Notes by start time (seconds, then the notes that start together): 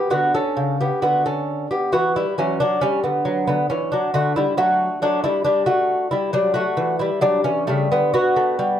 Already playing: B3 G4
0.10 D3 B3 F#4
0.34 C#4 A4
0.57 C#3
0.81 B3 G4
1.02 D3 B3 F#4
1.26 C#4 A4
1.71 B3 G4
1.92 E3 B3 F#4
2.16 G3 E4
2.38 E3 F#3 C#4
2.60 F#3 D4
2.81 G3 C#4
3.04 D3 B3
3.25 F#3
3.47 D3 B3
3.70 E3 C#4
3.92 F#3 D4
4.14 D3 A3 F#4
4.36 G3 E4
4.57 F#3 A3 F#4
5.02 F#3 A3 D4
5.24 G3 E4
5.44 G3 D4
5.66 A3 F#4
6.11 G3 E4
6.33 F#3 G3 D4
6.54 A3 F#4
6.77 E3
6.99 G3 E4
7.21 F#3 G3 D4
7.44 E3 C#4
7.67 C#3 G3 A3
7.92 D3 B3
8.14 B3 F#4
8.36 A3
8.59 G3